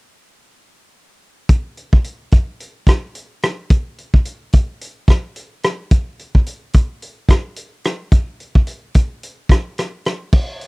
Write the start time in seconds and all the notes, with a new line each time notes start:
1.49 kick, closed hi-hat
1.77 closed hi-hat
1.93 kick
2.04 closed hi-hat
2.31 kick, closed hi-hat
2.60 closed hi-hat
2.87 kick, cross-stick, closed hi-hat
3.15 closed hi-hat
3.42 cross-stick, closed hi-hat
3.70 kick, closed hi-hat
3.98 closed hi-hat
4.14 kick
4.25 closed hi-hat
4.53 kick, closed hi-hat
4.81 closed hi-hat
5.08 kick, cross-stick, closed hi-hat
5.36 closed hi-hat
5.63 cross-stick, closed hi-hat
5.91 kick, closed hi-hat
6.19 closed hi-hat
6.35 kick
6.46 closed hi-hat
6.73 kick, closed hi-hat
7.02 closed hi-hat
7.29 kick, cross-stick, closed hi-hat
7.56 closed hi-hat
7.84 cross-stick, closed hi-hat
8.12 kick, closed hi-hat
8.40 closed hi-hat
8.55 kick
8.67 closed hi-hat
8.94 kick, closed hi-hat
9.23 closed hi-hat
9.49 kick, cross-stick, closed hi-hat
9.78 cross-stick, closed hi-hat
10.05 cross-stick, closed hi-hat
10.33 kick, crash
10.61 closed hi-hat